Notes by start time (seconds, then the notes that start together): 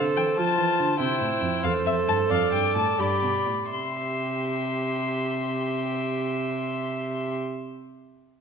Already playing: D3 A4 C5
0.16 E3 G5
0.38 F3 F4 A5
0.58 E3
0.80 D3
0.99 C3 E4 C5 G5
1.21 A2
1.41 F2
1.63 E2 A4 C5 F5
1.85 F2 E5
2.08 G2 A5
2.29 F2 D5 F5
2.52 G2 G5
2.75 A2 A5
2.99 G2 G4 D5 B5
3.23 B2
3.47 A2
3.71 C3 G4 E5 C6